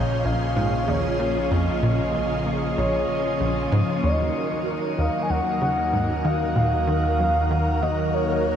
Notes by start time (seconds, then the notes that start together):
Already playing: A#1 C#3 F3 A#3 C#4 F4 G#4 C#5 C6
0.25 A#1 F5
0.56 G#2
0.88 D#2 C#5
1.19 A#2
1.51 F2 D#5
1.83 A#2
2.14 C#2
2.46 A#2
2.78 A#1 C#5
3.41 A#1
3.72 G#2
4.03 D#2 D#3 F#3 A#3 D#4 F#4 A#4 D#5
4.98 D#2 F5
5.23 G#5
5.30 D#2 F#5
5.61 C#3 F#5
5.93 G#2
6.25 D#3 F5
6.56 A#2 F5
6.87 D#3
7.19 F#2
7.51 D#3
7.82 D#2 D#5
8.14 C#5